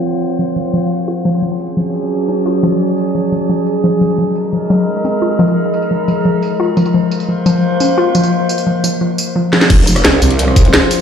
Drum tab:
CC |----------------|----------------|----------------|----------------|
HH |----------------|----------------|----------------|----------------|
TB |--xx--x---x---xx|--xx--x---x---xx|--xx--x---x---xx|--xx--x---x---xx|
SD |----------------|----------------|----------------|----------------|
BD |----------------|----------------|----------------|----------------|

CC |----------------|----------------|----------------|x---------------|
HH |----------------|----------------|----------------|x-xxx-oxx-xxx-o-|
TB |--xx--x---x---xx|--xx--x---x---xx|--xx--x---x-----|--xx--x---x---x-|
SD |----------------|----------------|--------------oo|---ro----r--o---|
BD |----------------|----------------|----------------|o---------o-----|